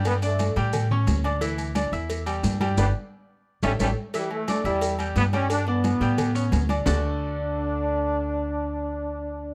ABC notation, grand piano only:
X:1
M:4/4
L:1/8
Q:1/4=176
K:D
V:1 name="Grand piano"
[G,Gg] [Ddd']2 [G,Gg]2 [Ccc']2 [Ddd'] | [E,Ee]2 [Ddd'] [Eee']2 [G,Gg]2 [G,Gg] | [GBd] z4 [Ace] [Ace] z | [E,Ee]2 [Ddd'] [Eee']2 [G,Gg]2 [G,Gg]- |
[G,Gg] [Ddd']2 [G,Gg]2 [Ccc']2 [Ddd'] | [D,A,DFAd]8- | [D,A,DFAd]8 |]